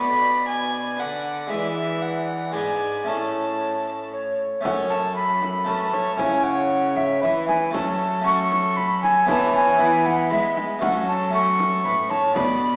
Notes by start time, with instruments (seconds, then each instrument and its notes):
Already playing: harpsichord B2 D4 B4, cello B2, recorder D5, violin B5
0.49 violin G#5
0.97 harpsichord D3 D4 B4, cello D3, recorder D5, violin F#5
1.47 harpsichord G#3 D4 B4, recorder D5, violin E5
1.51 harpsichord E3, cello E3
2.02 violin F#5
2.51 cello G#2, harpsichord G#3 D4 B4, recorder D5, violin G#5
2.55 harpsichord G#2
3.04 cello A2, harpsichord A2 A3 C#4 A4, recorder C#5, violin A5
4.12 recorder C#5
4.61 harpsichord F#2 A3 C#4 A4, violin C#5, recorder F#5
4.65 cello F#2, frame drum
4.90 recorder A5
5.16 violin A4, recorder B5
5.42 frame drum
5.64 harpsichord A3 C#4 A4, violin B4, recorder A5, frame drum
5.93 violin C#5, frame drum
6.16 harpsichord C#3 C#4 E4, cello C#3, violin C#5, recorder G#5, frame drum
6.43 recorder F#5
6.96 recorder E5, frame drum
7.21 harpsichord E3, cello E3, violin B4, recorder E5, frame drum
7.48 recorder G#5, frame drum
7.71 harpsichord F#3 A3 C#4 F#4, cello F#3, violin A4, recorder A5, frame drum
8.21 harpsichord A3 C#4 F#4
8.25 violin A4, recorder C#6
8.52 frame drum
8.76 recorder B5, frame drum
9.03 recorder G#5, frame drum
9.25 cello E3, harpsichord E3 B3 E4 B4, violin C#5, frame drum
9.29 recorder A5
9.55 recorder G#5
9.76 harpsichord E3 B3 E4 B4, violin B4
9.80 cello E3
10.06 recorder F#5, frame drum
10.30 harpsichord G#3, cello G#3, recorder E5, frame drum
10.57 frame drum
10.79 cello F#3, harpsichord F#3 A3 C#4 F#4, violin A4, recorder F#5, frame drum
11.08 recorder A5
11.30 harpsichord A3 C#4 F#4, violin A4, recorder C#6
11.59 frame drum
11.84 cello A2, harpsichord A2, violin B4, frame drum
12.10 violin C#5, recorder A5, frame drum
12.33 cello B2, harpsichord B2 B3 D4 F#4, violin D5, recorder B5, frame drum